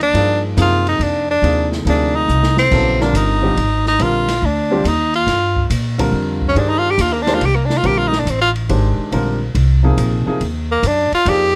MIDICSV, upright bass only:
0, 0, Header, 1, 3, 480
1, 0, Start_track
1, 0, Key_signature, -3, "major"
1, 0, Tempo, 427655
1, 162, Time_signature, 3, 2, 24, 8
1, 12968, End_track
2, 0, Start_track
2, 0, Title_t, "Upright bass"
2, 0, Program_c, 0, 32
2, 0, Note_on_c, 0, 39, 84
2, 143, Note_off_c, 0, 39, 0
2, 154, Note_on_c, 0, 43, 85
2, 623, Note_off_c, 0, 43, 0
2, 638, Note_on_c, 0, 42, 91
2, 1105, Note_off_c, 0, 42, 0
2, 1111, Note_on_c, 0, 41, 92
2, 1582, Note_off_c, 0, 41, 0
2, 1594, Note_on_c, 0, 39, 87
2, 2064, Note_off_c, 0, 39, 0
2, 2077, Note_on_c, 0, 38, 89
2, 2545, Note_off_c, 0, 38, 0
2, 2563, Note_on_c, 0, 36, 85
2, 3028, Note_off_c, 0, 36, 0
2, 3048, Note_on_c, 0, 34, 85
2, 3511, Note_off_c, 0, 34, 0
2, 3520, Note_on_c, 0, 31, 94
2, 3987, Note_off_c, 0, 31, 0
2, 4000, Note_on_c, 0, 32, 85
2, 4466, Note_off_c, 0, 32, 0
2, 4481, Note_on_c, 0, 34, 78
2, 4947, Note_off_c, 0, 34, 0
2, 4962, Note_on_c, 0, 38, 93
2, 5427, Note_off_c, 0, 38, 0
2, 5433, Note_on_c, 0, 39, 99
2, 5903, Note_off_c, 0, 39, 0
2, 5911, Note_on_c, 0, 43, 89
2, 6381, Note_off_c, 0, 43, 0
2, 6395, Note_on_c, 0, 46, 92
2, 6864, Note_off_c, 0, 46, 0
2, 6869, Note_on_c, 0, 41, 89
2, 7340, Note_off_c, 0, 41, 0
2, 7351, Note_on_c, 0, 43, 79
2, 7821, Note_off_c, 0, 43, 0
2, 7832, Note_on_c, 0, 39, 99
2, 8302, Note_off_c, 0, 39, 0
2, 8315, Note_on_c, 0, 36, 90
2, 8783, Note_off_c, 0, 36, 0
2, 8790, Note_on_c, 0, 34, 88
2, 9261, Note_off_c, 0, 34, 0
2, 9266, Note_on_c, 0, 33, 91
2, 9738, Note_off_c, 0, 33, 0
2, 9758, Note_on_c, 0, 32, 90
2, 10060, Note_off_c, 0, 32, 0
2, 10232, Note_on_c, 0, 34, 79
2, 10702, Note_off_c, 0, 34, 0
2, 10715, Note_on_c, 0, 36, 93
2, 11183, Note_off_c, 0, 36, 0
2, 11194, Note_on_c, 0, 34, 99
2, 11498, Note_off_c, 0, 34, 0
2, 11677, Note_on_c, 0, 39, 83
2, 12144, Note_off_c, 0, 39, 0
2, 12151, Note_on_c, 0, 42, 102
2, 12456, Note_off_c, 0, 42, 0
2, 12632, Note_on_c, 0, 41, 100
2, 12968, Note_off_c, 0, 41, 0
2, 12968, End_track
3, 0, Start_track
3, 0, Title_t, "Muted upright bass strokes"
3, 10073, Note_on_c, 9, 29, 42
3, 10185, Note_off_c, 9, 29, 0
3, 11525, Note_on_c, 9, 29, 42
3, 11637, Note_off_c, 9, 29, 0
3, 12478, Note_on_c, 9, 29, 42
3, 12591, Note_off_c, 9, 29, 0
3, 12968, End_track
0, 0, End_of_file